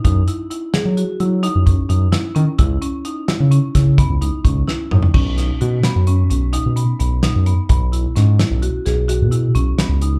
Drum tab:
CC |----------------------|----------------------|x---------------------|----------------------|
HH |x-x-x-x-x-x-x-x-x-x-x-|x-x-x-x-x-x-x-x-x-----|--x-x-x-x-x-x-x-x-x-x-|x-x-x-x-x-x-x-x-x-x-x-|
SD |------o-----------o---|------o---o-------o---|--o---o-----------o---|----o-o---o-------o---|
T2 |----------------------|--------------------o-|----------------------|----------------------|
FT |----------------------|---------------------o|----------------------|----------------------|
BD |o-------------o-------|o---------o-o---o-----|o---------------------|o---------------------|